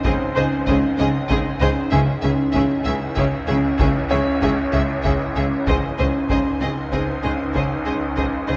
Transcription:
Already playing: synth drone C#2, ambient pad D#4 G#5 C6
0.04 double bass section C#2, marimba C#3, cello section C#3, viola section C4, grand piano C4 C5, violin section G#4 D#5, taiko
0.36 double bass section C#2, cello section C#3, marimba C#4, violin section G#4 D#5, viola section C5
0.67 double bass section C#2, cello section C#3, marimba C#4, violin section G#4 D#5, viola section C5, taiko
0.98 double bass section C#2, marimba C#3, cello section C#3, viola section C4, violin section G#4 D#5
1.29 double bass section C#2, marimba C#3, cello section C#3, viola section C4, violin section G#4 D#5, taiko
1.60 double bass section C#2, cello section C#3, marimba C#4, violin section G#4 D#5, viola section C5
1.91 double bass section C#2, synth drone C#2, marimba C#3, cello section C#3, viola section C#4, ambient pad E4 C#5 G#5, violin section G#4 E5, taiko
2.22 double bass section C#2, cello section C#3, viola section C#4, marimba C#4, violin section G#4 E5
2.53 double bass section C#2, cello section C#3, marimba C#4, viola section C#4, violin section G#4 E5, taiko
2.85 double bass section C#2, marimba C#3, cello section C#3, viola section C#4, violin section G#4 E5
3.15 double bass section C#2, marimba C#3, cello section C#3, viola section C#4, violin section G#4 E5, taiko
3.47 double bass section C#2, cello section C#3, viola section C#4, marimba C#4, violin section G#4 E5
3.78 double bass section C#2, marimba C#3, cello section C#3, viola section C#4, violin section G#4 E5, taiko
4.10 double bass section C#2, cello section C#3, viola section C#4, marimba C#4, violin section G#4 E5, grand piano C#5
4.41 double bass section C#2, cello section C#3, viola section C#4, marimba C#4, violin section G#4 E5, taiko
4.72 double bass section C#2, cello section C#3, marimba C#3, viola section C#4, violin section G#4 E5
5.03 double bass section C#2, cello section C#3, marimba C#3, viola section C#4, violin section G#4 E5, taiko
5.36 double bass section C#2, cello section C#3, viola section C#4, marimba C#4, violin section G#4 E5
5.67 double bass section C#2, synth drone C#2, cello section C#3, marimba C#3, ambient pad D#4 G#5 C6, violin section G#4 D#5, viola section C5, taiko
5.98 double bass section C#2, cello section C#3, marimba C#4, violin section G#4 D#5, viola section C5
6.29 double bass section C#2, cello section C#3, marimba C#4, violin section G#4 D#5, viola section C5, taiko
6.61 double bass section C#2, cello section C#3, marimba C#3, viola section C4, violin section G#4 D#5
6.92 double bass section C#2, cello section C#3, marimba C#3, viola section C4, violin section G#4 D#5, grand piano C5, taiko
7.23 double bass section C#2, cello section C#3, marimba C#4, violin section G#4 D#5, viola section C5
7.54 double bass section C#2, cello section C#3, marimba C#3, grand piano C#4 C#5, violin section G#4 D#5, viola section C5, taiko
7.85 double bass section C#2, cello section C#3, marimba C#4, violin section G#4 D#5, viola section C5
8.16 double bass section C#2, cello section C#3, marimba C#4, violin section G#4 D#5, viola section C5, taiko
8.47 double bass section C#2, marimba C#3, cello section C#3, violin section G#4 D#5, viola section C5

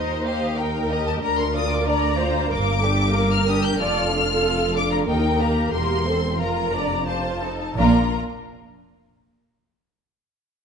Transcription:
Already playing: double bass section D#2, cello section D#2, violin section D#4 A#4 D#5, viola section C5
0.24 violin section G4 D#5 F5
0.57 violin section D#4 A#4 G5, viola section A#4
0.90 violin section G4 D#5 A#5
1.06 violin section A5
1.21 double bass section D2, cello section D2, violin section D4 A#4 A#5, viola section A#4
1.38 violin section C6
1.53 violin section F4 D5 D#6
1.71 violin section D6
1.85 violin section D4 A#4 A#5, viola section D5
2.18 violin section F4 D5, viola section C5
2.49 double bass section G1, cello section G2, violin section A#3 A#4 D6, viola section A#4
2.81 violin section D4 G4, viola section A4
3.13 violin section A#3 A#4, viola section A#4
3.32 violin section F6
3.47 violin section D4 G4 D#6
3.63 violin section G6
3.77 double bass section F1, cello section F2, violin section F4 A4 F6, viola section D5
4.11 violin section D4 F4, viola section A4
4.42 violin section F4 A4
4.75 violin section D4 F4 D6
4.91 violin section A#5
5.06 cello section D#2, double bass section D#2, violin section D#4 A#4 G5, viola section A#4
5.40 violin section A#3 G4 A#5
5.73 double bass section E1, cello section E2, violin section A#3 A#4 C6, viola section G4
6.05 violin section C4 C5, viola section A4
6.38 double bass section F1, cello section F2, violin section F4 A#4 A#5, viola section A#4
6.73 violin section D4 D5, viola section D5
7.06 violin section F4 C5 A5, viola section C5
7.41 violin section D#4 A4
7.76 double bass section A#1, cello section A#2, viola section A#3 D4, violin section F4 A#4 A#5

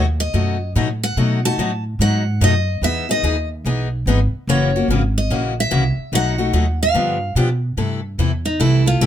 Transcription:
Already playing: upright bass D#2
0.20 steel-string acoustic guitar D#5
0.34 upright bass F#2, steel-string acoustic guitar B2 F#3 A3 D#4 F#4
0.75 upright bass A2, steel-string acoustic guitar B2 F#3 A3 D#4 F#4
1.03 steel-string acoustic guitar F#5
1.17 upright bass B2, steel-string acoustic guitar B2 F#3 A3 D#4 F#4
1.45 steel-string acoustic guitar A3 D#4 F#4 A5
1.58 upright bass A2, steel-string acoustic guitar B2 F#3 A3 D#4 F#4
1.99 upright bass G#2, steel-string acoustic guitar B2 F#3 A3 D#4 F#4 F#5
2.41 upright bass F#2, steel-string acoustic guitar B2 F#3 A3 D#4 F#4 D#5
2.81 upright bass E2, steel-string acoustic guitar E3 B3 D#4 G#4 E5
3.09 steel-string acoustic guitar B3 D#4 G#4 D#5
3.23 upright bass D#2, steel-string acoustic guitar E3 B3 D#4 G#4
3.65 upright bass B1, steel-string acoustic guitar E3 B3 D#4 G#4
4.06 upright bass G#1, steel-string acoustic guitar E3 B3 D#4 G#4
4.33 muted upright bass stroke
4.47 upright bass F#1, steel-string acoustic guitar C#3 E3 A#3 C#4 F#4 C#5
4.76 steel-string acoustic guitar A#3 C#4 F#4
4.88 upright bass G#1, steel-string acoustic guitar C#3 E3 A#3 C#4 F#4
5.18 steel-string acoustic guitar D#5
5.30 upright bass A#1, steel-string acoustic guitar C#3 E3 A#3 C#4 F#4
5.60 steel-string acoustic guitar E5
5.71 upright bass C2, steel-string acoustic guitar C#3 E3 A#3 C#4 F#4
5.97 muted upright bass stroke
6.12 upright bass B1, steel-string acoustic guitar B2 F#3 A3 D#4 F#4 F#5
6.38 steel-string acoustic guitar A3 D#4 F#4
6.53 upright bass D#2, steel-string acoustic guitar B2 F#3 A3 D#4 F#4
6.83 steel-string acoustic guitar F5
6.94 upright bass G2, steel-string acoustic guitar D3 F3 B3 D4 G4
7.35 upright bass B2, steel-string acoustic guitar D3 F3 B3 D4 G4
7.77 upright bass G2, steel-string acoustic guitar C3 E3 A3 E4 A4
8.18 upright bass E2, steel-string acoustic guitar C3 E3 A3 E4 A4
8.45 steel-string acoustic guitar D#4
8.60 upright bass C2, steel-string acoustic guitar C3 E3 A3 E4 A4
8.86 steel-string acoustic guitar A3 E4 F4 A4
9.01 upright bass B1, steel-string acoustic guitar C3 E3 A3 E4 G4 A4

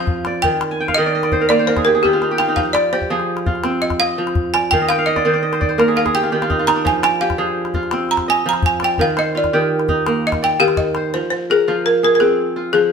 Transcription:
Already playing: kora F3 C4 F4 G#4 D#5, balafon F5
0.07 calabash thump
0.25 kora D5, calabash click
0.42 kora D#3, balafon G5, calabash thump, calabash click
0.61 calabash click
0.71 kora G#5
0.80 kora G5
0.88 kora F5, calabash thump, calabash click
0.95 kora D#3 D#5, balafon D#5
1.06 kora D5
1.15 kora D#5
1.23 kora D5, calabash click
1.32 kora C5, calabash thump
1.41 kora A#4
1.49 kora A#3 D5, balafon D5, calabash click
1.59 kora C5, calabash click
1.67 kora A#4, balafon C5, calabash click
1.77 kora G#4, calabash thump, calabash click
1.85 kora G4, balafon A#4, calabash click
1.95 kora G#4
2.03 kora D#3 G4, balafon G4, calabash thump
2.13 kora F4
2.22 kora D#4, calabash click
2.31 kora G4
2.38 kora F4, balafon G5, calabash click
2.48 kora D#4
2.56 kora F3, balafon F5, calabash thump
2.73 balafon D5, kora D5, calabash click
2.93 kora G4, balafon C5, calabash click
3.01 calabash thump
3.10 kora F3 G#4
3.19 calabash click
3.37 calabash click
3.46 kora F4, calabash thump
3.55 calabash click
3.64 kora C4, calabash click
3.82 balafon D#5, calabash click
3.90 calabash thump, calabash click
4.00 kora D#5, balafon F5, calabash click
4.09 calabash click
4.18 kora F3
4.27 calabash click
4.35 calabash thump
4.54 kora D5, balafon G#5, calabash click
4.71 kora D#3 F5, balafon G5, calabash thump
4.81 kora D#5
4.89 balafon F5, kora G5, calabash click
4.99 kora F5
5.06 balafon D#5, kora D#5, calabash click
5.16 kora D5, calabash thump, calabash click
5.25 kora D#3 C5
5.34 kora D5, calabash click
5.43 kora D#5
5.52 kora C5, calabash click
5.61 kora D5, calabash thump
5.69 kora C5, calabash click
5.78 kora A#3 A#4, calabash click
5.88 kora G#4
5.96 kora A#4, balafon F5, calabash click
6.05 kora G#4, calabash thump, calabash click
6.15 kora G4, balafon G5
6.23 kora F4, calabash click
6.32 kora D#3 G4
6.42 kora F4, calabash click
6.50 kora D#4, calabash thump
6.59 kora F4
6.67 kora D#4, balafon A#5, calabash click
6.76 kora D4
6.85 kora F3, balafon G#5, calabash thump
7.03 kora D5, balafon G#5, calabash click
7.21 kora G4, balafon F5, calabash click
7.30 calabash thump, calabash click
7.38 kora F3 G#4
7.48 calabash click
7.65 calabash click
7.74 kora F4, calabash thump
7.83 calabash click
7.91 kora C4, calabash click
8.09 balafon A#5, calabash click
8.17 calabash thump, calabash click
8.27 kora D#5, balafon G#5, calabash click
8.35 calabash click
8.46 kora F3, balafon A#5
8.53 calabash click
8.62 balafon G#5, calabash thump
8.80 kora D5, calabash click
8.84 balafon G5
8.98 kora D#3, balafon F5, calabash thump
9.08 calabash click
9.17 kora C5, balafon D#5, calabash click
9.25 calabash click
9.35 kora F4, balafon D5, calabash click
9.44 calabash thump, calabash click
9.53 kora D#3 G4
9.62 calabash click
9.80 calabash click
9.88 kora D#4, calabash thump
10.06 kora A#3, calabash click
10.27 balafon D#5
10.32 calabash thump, calabash click
10.42 kora D5, balafon G5
10.51 calabash click
10.60 kora D#3, balafon G4 F5
10.68 calabash click
10.77 balafon D#5, calabash thump, calabash click
10.95 kora C5, calabash click
11.14 kora F3, balafon C5
11.30 balafon C5
11.50 balafon G#4, kora A#4
11.68 kora F3 F4
11.86 balafon A#4
12.03 kora G#4, balafon A#4
12.15 balafon A#4
12.20 kora C4, balafon G#4
12.56 kora F4
12.73 kora F3, balafon G#4

